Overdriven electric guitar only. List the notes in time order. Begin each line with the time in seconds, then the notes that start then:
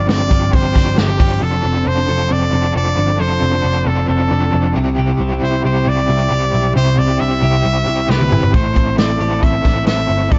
Already playing: D4 G4
0.00 G2 D3 F3 C4
0.31 F3 C4 D4 G4
0.54 F3 C4 D4 G4
0.75 G2 D3 F3 C4 D4 G4
1.19 F3 C4 D4 G4
1.42 F3 C4 D4 A4
1.74 C4 D4 A4
2.08 F3 C4 D4 A4
2.53 F3 C4 D4 A4
2.75 F3 C4 D4 A4
3.19 F3 C4 D4 A4
3.53 C4 D4 A4
3.86 F3 C4 D4 A4
4.31 F3 C4 D4 A4
4.53 F3 C4 D4 A4
4.75 C3 G3 C4 E4 G4
5.32 C4 E4 G4
5.65 G3 C4 E4 G4
6.10 G3 C4 E4 G4
6.31 G3 C4 E4 G4
6.76 C3 G3 C4 E4 G4
7.08 C4 E4 G4
7.42 G3 C4 E4 G4
7.87 G3 C4 E4 G4
8.09 G3 C4 E4 G4
8.53 A2 E3 A3 C4 E4 A4
8.87 A3 C4 E4 A4
9.20 A3 C4 E4 A4
9.65 A3 C4 E4 A4
9.87 A3 C4 E4 A4
10.32 A2 E3 A3 C4 E4 A4